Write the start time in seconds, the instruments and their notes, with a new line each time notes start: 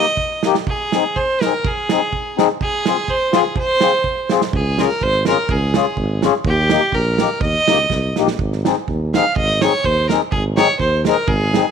Already playing: fiddle D#5
0.17 kick
0.43 accordion A#3 D#4 G4, snare, hi-hat pedal
0.55 snare
0.67 fiddle G#4, kick
0.92 accordion C4 D#4 G#4, snare, hi-hat pedal
1.16 fiddle C5, kick
1.41 accordion C4 D#4 G#4, fiddle A#4, snare, hi-hat pedal
1.65 fiddle G#4, kick
1.89 accordion C4 D#4 G#4, snare, hi-hat pedal
2.13 kick
2.37 accordion C4 D#4 G#4, snare, hi-hat pedal
2.61 fiddle G#4, kick
2.86 accordion C4 F4 G#4, snare, hi-hat pedal
3.08 fiddle C5, kick
3.32 accordion C4 F4 G#4, fiddle G#4, snare, hi-hat pedal
3.56 fiddle C5, kick
3.80 accordion C4 F4 G#4, snare, hi-hat pedal
4.04 kick
4.30 accordion C4 F4 G#4, snare, hi-hat pedal
4.41 snare
4.53 tuba C#2, fiddle G#4, kick
4.79 accordion C#4 F4 G#4, fiddle A#4, snare, hi-hat pedal
5.01 tuba G#1, fiddle C5, kick
5.25 accordion C#4 F4 G#4, fiddle A#4, snare, hi-hat pedal
5.49 tuba C#2, fiddle G#4, kick
5.74 accordion C#4 F4 G#4, snare, hi-hat pedal
5.97 tuba G#1, kick
6.22 accordion C#4 F4 G#4, snare, hi-hat pedal
6.45 tuba D#2, fiddle G4, kick
6.70 accordion A#3 D#4 G4, snare, hi-hat pedal
6.92 tuba A#1, fiddle A#4, kick
7.18 accordion A#3 D#4 G4, snare, hi-hat pedal
7.41 tuba D#2, fiddle D#5, kick
7.67 tuba C#2, accordion A#3 D#4 G4, snare, hi-hat pedal
7.90 tuba C2, kick, snare
8.16 tuba A#1, accordion A#3 D#4 G4, snare, hi-hat pedal
8.28 snare
8.39 tuba G#1, kick
8.53 snare
8.64 accordion C4 D#4 G#4, snare, hi-hat pedal
8.88 tuba D#2, kick
9.14 accordion C4 D#4 G#4, fiddle F5, snare, hi-hat pedal
9.36 tuba G#1, fiddle D#5, kick
9.61 accordion C4 D#4 G#4, fiddle C#5, snare, hi-hat pedal
9.84 tuba D#2, fiddle C5, kick
10.09 accordion C4 D#4, fiddle A#4, snare, hi-hat pedal
10.13 accordion G#4
10.31 tuba G#1, fiddle G#4, kick
10.56 accordion C4 D#4 G#4, fiddle C#5, snare, hi-hat pedal
10.79 tuba D#2, fiddle C5, kick
11.05 accordion C4 D#4 G#4, fiddle A#4, snare, hi-hat pedal
11.27 tuba G#1, fiddle G#4, kick
11.54 accordion C4 D#4 G#4, snare, hi-hat pedal